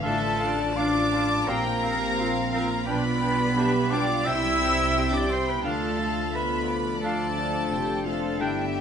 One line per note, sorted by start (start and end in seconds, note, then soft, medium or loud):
0.00 1.49 A1 medium
0.00 1.52 A2 medium
0.00 2.84 F3 medium
0.00 0.73 A3 medium
0.00 0.39 D4 medium
0.00 1.45 D4 medium
0.00 0.76 D4 medium
0.00 0.76 F4 medium
0.00 0.73 A4 loud
0.00 0.77 D5 medium
0.00 0.40 E5 medium
0.00 0.18 F5 medium
0.00 0.78 A5 loud
0.00 0.74 A5 medium
0.06 0.22 D4 medium
0.22 1.52 A3 medium
0.39 1.52 D4 medium
0.39 0.59 D4 medium
0.39 0.78 D5 medium
0.39 0.55 F5 medium
0.60 0.95 F4 medium
0.76 1.48 D4 medium
0.76 1.13 D4 medium
0.76 0.95 D4 medium
0.76 1.12 F4 medium
0.76 1.49 D5 loud
0.76 1.52 D5 medium
0.76 0.92 F5 medium
0.76 1.13 F5 medium
0.76 1.51 D6 loud
0.76 1.49 D6 medium
0.96 2.00 F4 medium
1.13 1.29 D4 medium
1.13 1.49 F4 medium
1.13 1.30 F5 medium
1.13 2.18 F5 medium
1.13 1.49 A5 medium
1.47 2.85 A#1 medium
1.47 2.91 A#2 medium
1.47 2.52 A#3 medium
1.47 1.63 C4 medium
1.47 2.84 C4 medium
1.47 2.19 G4 medium
1.47 2.52 A#4 loud
1.47 1.64 F5 medium
1.47 1.84 G5 medium
1.47 2.51 A#5 loud
1.66 2.90 F3 medium
1.82 1.98 C4 medium
1.82 2.90 C4 medium
1.82 2.87 F5 medium
1.82 1.99 F5 medium
2.01 2.90 F4 medium
2.18 2.34 C4 medium
2.18 3.55 F4 medium
2.18 2.34 F5 medium
2.18 2.52 F5 medium
2.35 2.90 C5 medium
2.52 2.87 A#3 medium
2.52 2.69 C4 medium
2.52 2.87 A#4 loud
2.52 2.68 F5 medium
2.52 2.90 F5 medium
2.52 2.88 A#5 medium
2.52 2.87 A#5 medium
2.71 2.91 F6 medium
2.86 4.26 B1 medium
2.86 4.29 B2 medium
2.86 5.48 G3 medium
2.86 4.22 B3 medium
2.86 3.91 B3 loud
2.86 3.22 D4 medium
2.86 3.04 D4 medium
2.86 3.94 B4 loud
2.86 3.55 D5 medium
2.86 3.02 G5 medium
2.86 3.92 B5 loud
2.86 3.91 B5 loud
3.06 4.29 B3 medium
3.21 4.29 D4 medium
3.21 3.38 D4 medium
3.21 3.57 D4 medium
3.21 3.37 G5 medium
3.40 3.73 G4 medium
3.56 3.72 D4 medium
3.56 4.27 D4 medium
3.56 3.92 G4 medium
3.56 4.29 D5 medium
3.56 3.91 E5 medium
3.56 3.72 G5 medium
3.89 4.05 D4 medium
3.89 4.26 D4 medium
3.89 4.28 D5 loud
3.89 4.25 F5 medium
3.89 4.06 G5 medium
3.89 5.29 G5 medium
3.89 4.26 D6 medium
3.94 4.27 F4 medium
4.25 5.65 C2 medium
4.25 5.67 C3 medium
4.25 4.41 C4 medium
4.25 5.48 C4 medium
4.25 4.96 C4 medium
4.25 5.13 E4 loud
4.25 5.65 E4 medium
4.25 5.18 E5 loud
4.25 4.42 G5 medium
4.25 4.60 G5 medium
4.25 5.12 E6 loud
4.25 5.13 E6 loud
4.44 5.67 G3 medium
4.61 4.77 C4 medium
4.61 5.67 C4 medium
4.61 4.77 G5 medium
4.61 5.63 G5 medium
4.79 5.67 G4 medium
4.96 5.11 C4 medium
4.96 5.65 G4 medium
4.96 5.12 G5 medium
5.13 5.30 D4 medium
5.13 5.67 C5 medium
5.13 5.34 D5 loud
5.13 5.30 D6 medium
5.13 5.31 D6 medium
5.30 5.47 C4 medium
5.30 5.46 C4 medium
5.30 5.50 C5 loud
5.30 5.67 G5 medium
5.30 5.46 G5 medium
5.30 5.48 C6 medium
5.46 5.64 B3 medium
5.46 5.68 B4 medium
5.46 5.64 B5 medium
5.46 5.65 B5 medium
5.46 5.67 E6 medium
5.63 7.66 D2 medium
5.63 8.42 D3 medium
5.63 8.36 F3 medium
5.63 6.34 A3 medium
5.63 5.88 D4 medium
5.63 8.81 D4 medium
5.63 5.99 D4 medium
5.63 5.97 F4 medium
5.63 6.36 A4 loud
5.63 5.89 F5 medium
5.63 5.98 F5 medium
5.63 6.32 A5 medium
5.82 7.87 D4 medium
5.98 7.69 A3 medium
5.98 7.02 F4 medium
5.98 6.33 F5 medium
6.17 8.43 F4 medium
6.33 7.01 B3 medium
6.33 7.02 B4 medium
6.33 7.54 D5 medium
6.33 6.68 E5 medium
6.33 7.02 B5 medium
6.33 6.78 B5 medium
6.52 8.43 A4 medium
6.69 7.71 D5 medium
6.69 7.02 F5 medium
6.86 7.19 D6 medium
7.01 8.03 A3 medium
7.01 7.36 D4 medium
7.01 7.27 D4 medium
7.01 7.36 F4 medium
7.01 8.03 A4 loud
7.01 7.37 F5 medium
7.01 8.00 A5 medium
7.01 8.05 A5 medium
7.05 7.28 F5 medium
7.20 8.81 D6 medium
7.37 7.70 D4 medium
7.37 8.43 F5 medium
7.55 8.81 D5 medium
7.70 8.40 F1 medium
7.70 8.05 A3 medium
7.70 8.40 C4 medium
7.70 8.05 G4 medium
7.70 8.05 G5 medium
7.89 8.23 D4 medium
8.04 8.39 A3 medium
8.04 8.43 A3 medium
8.04 8.39 F4 medium
8.04 8.41 A4 medium
8.04 8.40 F5 medium
8.04 8.40 A5 medium
8.04 8.42 A5 medium
8.24 8.81 D4 medium
8.39 8.81 G1 medium
8.39 8.81 G2 medium
8.39 8.81 G3 medium
8.39 8.81 B3 medium
8.39 8.66 D4 medium
8.39 8.76 E4 medium
8.39 8.81 G4 medium
8.39 8.81 E5 medium
8.39 8.81 G5 medium
8.39 8.66 G5 medium
8.39 8.81 G5 medium
8.60 8.81 D3 soft
8.75 8.81 D4 medium